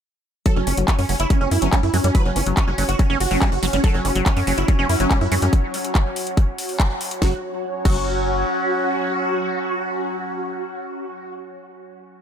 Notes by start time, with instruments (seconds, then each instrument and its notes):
0.46 acid bass F#3, analog synth pad F#4, supersaw synth A4, kick, closed hi-hat
0.56 analog synth bass F#1, supersaw synth C#4, analog synth pad C#5
0.67 analog synth bass F#1, supersaw synth C#4, acid bass G4, open hi-hat
0.77 analog synth bass F#1, acid bass F#3, closed hi-hat
0.88 supersaw synth C#4, kick, clap, closed hi-hat
0.99 analog synth bass F#2, acid bass F#3, supersaw synth C#4, open hi-hat
1.09 analog synth bass F#1, acid bass F#3, supersaw synth C#4, open hi-hat
1.20 analog synth bass F#1, supersaw synth E4, closed hi-hat
1.30 acid bass F#3, supersaw synth C#4, kick, closed hi-hat
1.41 analog synth bass F#1, acid bass C#4, supersaw synth C#4
1.51 analog synth bass F#2, wobble bass B3, supersaw synth E4, open hi-hat
1.62 analog synth bass G1, acid bass F#3, wobble bass B3, supersaw synth C#4, closed hi-hat
1.73 acid bass G3, supersaw synth C#4, kick, clap, closed hi-hat
1.83 analog synth bass F#2, supersaw synth E4
1.94 analog synth bass F#2, acid bass F#3, supersaw synth C#4, open hi-hat
2.04 analog synth bass F#2, acid bass G3, supersaw synth C#4, closed hi-hat
2.09 analog synth pad F#5
2.15 acid bass F#3, supersaw synth B4, kick, closed hi-hat
2.25 analog synth bass F#1, supersaw synth C#4
2.36 analog synth bass F#1, wobble bass B3, supersaw synth C#4, acid bass G4, open hi-hat
2.46 analog synth bass F#1, acid bass F#3, wobble bass B3, closed hi-hat
2.57 supersaw synth C#4, kick, clap, closed hi-hat
2.68 analog synth bass F#1, acid bass F#3, supersaw synth C#4
2.78 analog synth bass F#1, acid bass F#3, supersaw synth C#4, open hi-hat
2.89 analog synth bass F#1, supersaw synth F#4, closed hi-hat
2.99 acid bass F#3, supersaw synth C#4, kick, closed hi-hat
3.10 analog synth bass F#1, acid bass C#4, supersaw synth C#4
3.20 analog synth bass F#1, supersaw synth F#4, open hi-hat
3.31 analog synth bass F#1, acid bass F#3, supersaw synth C#4, open hi-hat
3.42 acid bass G3, supersaw synth C#4, kick, clap, closed hi-hat
3.52 analog synth bass F#1, supersaw synth F#4
3.63 analog synth bass F#1, acid bass F#3, supersaw synth C#4, open hi-hat
3.73 analog synth bass F#1, acid bass G3, supersaw synth C#4, closed hi-hat
3.84 synth drone F#3 C#4, acid bass F#3, supersaw synth A4, kick, closed hi-hat
3.94 analog synth bass F#1, supersaw synth C#4
4.05 analog synth bass F#1, supersaw synth C#4, acid bass G4, open hi-hat
4.15 analog synth bass F#1, acid bass F#3, closed hi-hat
4.26 supersaw synth C#4, kick, clap, closed hi-hat
4.37 analog synth bass F#2, acid bass F#3, supersaw synth C#4, open hi-hat
4.47 analog synth bass F#1, acid bass F#3, supersaw synth C#4, open hi-hat
4.58 analog synth bass F#1, supersaw synth E4, closed hi-hat
4.68 acid bass F#3, supersaw synth C#4, kick, closed hi-hat
4.79 analog synth bass F#1, acid bass C#4, supersaw synth C#4
4.89 analog synth bass F#2, supersaw synth E4, open hi-hat
5.00 analog synth bass G1, acid bass F#3, supersaw synth C#4, closed hi-hat
5.11 acid bass G3, supersaw synth C#4, kick, clap, closed hi-hat
5.21 analog synth bass F#2, supersaw synth E4
5.32 analog synth bass F#2, acid bass F#3, supersaw synth C#4, open hi-hat
5.42 analog synth bass F#2, acid bass G3, supersaw synth C#4, closed hi-hat
5.53 kick, closed hi-hat
5.74 open hi-hat
5.84 closed hi-hat
5.95 kick, clap, closed hi-hat
6.16 open hi-hat
6.27 closed hi-hat
6.37 kick, closed hi-hat
6.58 open hi-hat
6.69 open hi-hat
6.80 kick, clap, closed hi-hat
7.01 open hi-hat
7.11 closed hi-hat
7.22 analog synth bass F#1, synth drone F#3 C#4, acid bass F#3, supersaw synth F#4, analog synth pad F#4, kick, snare
7.28 analog synth pad C#5
7.34 analog synth pad F#5
7.85 analog synth bass F#1, acid bass F#3, supersaw synth F#4, kick, crash